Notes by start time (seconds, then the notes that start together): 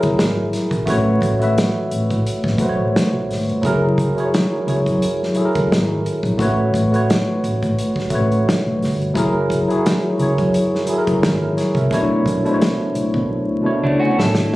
Already playing: F#3 E4 G#4 A#4 C#5
0.03 F#1, kick, closed hi-hat
0.19 G#1, snare, closed hi-hat
0.53 snare, closed hi-hat
0.71 A#1, kick, closed hi-hat
0.86 A1 A3 F#4 B4, kick, closed hi-hat
0.90 C#5
1.22 A1, kick, closed hi-hat
1.39 A3 F#4 B4, closed hi-hat
1.44 E5
1.58 snare, closed hi-hat
1.91 A1, closed hi-hat
2.10 A2, kick, closed hi-hat
2.27 closed hi-hat
2.44 A1, kick, snare
2.58 B1 A3 F#4 B4, kick, closed hi-hat
2.63 C5
2.69 C#5
2.79 A1
2.96 snare, closed hi-hat
3.13 B1
3.28 G#1, snare, open hi-hat
3.48 G1, closed hi-hat
3.62 F#1 F#3 E4 G#4, kick, closed hi-hat
3.66 A#4
3.98 kick, closed hi-hat
4.15 F#3 E4 G#4, closed hi-hat
4.20 C#5
4.34 snare, closed hi-hat
4.65 C#2 F#3 E4 G#4, closed hi-hat
4.69 C#5
4.86 F#2, kick, closed hi-hat
5.02 closed hi-hat
5.23 snare
5.34 F#3 E4 G#4, muted fingered electric bass stroke, closed hi-hat
5.39 A4
5.45 A#4
5.55 F#1, kick, closed hi-hat
5.71 G#1, snare, closed hi-hat
6.06 closed hi-hat
6.23 A#1, kick, closed hi-hat
6.38 A1 A3 F#4 B4, kick, closed hi-hat
6.42 C#5
6.74 A1, kick, closed hi-hat
6.91 A3 F#4 B4, closed hi-hat
6.96 C#5
7.10 snare, closed hi-hat
7.43 A1, closed hi-hat
7.63 A2, kick, closed hi-hat
7.79 closed hi-hat
7.96 muted fingered electric bass stroke, kick, snare
8.10 A1 A3 F#4 B4, kick, closed hi-hat
8.15 C#5
8.32 closed hi-hat
8.49 snare, closed hi-hat
8.66 B1
8.81 G1, snare, open hi-hat
9.02 closed hi-hat
9.14 F#1 F#3 E4 G#4, kick, closed hi-hat
9.18 A#4
9.50 kick, closed hi-hat
9.68 F#3 E4 G#4, closed hi-hat
9.72 C#5
9.86 snare, closed hi-hat
10.18 C#2 F#3 E4 G#4, closed hi-hat
10.22 C#5
10.38 F#2, kick, closed hi-hat
10.54 closed hi-hat
10.75 snare
10.87 F#3 E4 G#4, muted fingered electric bass stroke, closed hi-hat
10.91 A4
10.98 A#4
11.07 F#1, kick, closed hi-hat
11.22 G#1, snare, closed hi-hat
11.42 E4 A#4
11.57 G#4 C#5, snare, closed hi-hat
11.75 C2 A#4 E5, kick, closed hi-hat
11.90 B1 B2 A3 D4 E4, kick, closed hi-hat
11.94 C#5
12.26 B1, kick, closed hi-hat
12.43 B2 A3 D4 E4, closed hi-hat
12.48 C5
12.54 C#5
12.62 snare, closed hi-hat
12.95 B1, closed hi-hat
13.14 B2, kick
13.29 B1
13.61 B2 A3 D4 E4, muted fingered electric bass stroke
13.66 C#5
13.83 C#2 A3 D4
14.00 C#4 F#4
14.18 A1 E4 A4, snare
14.33 G#1, snare
14.52 G1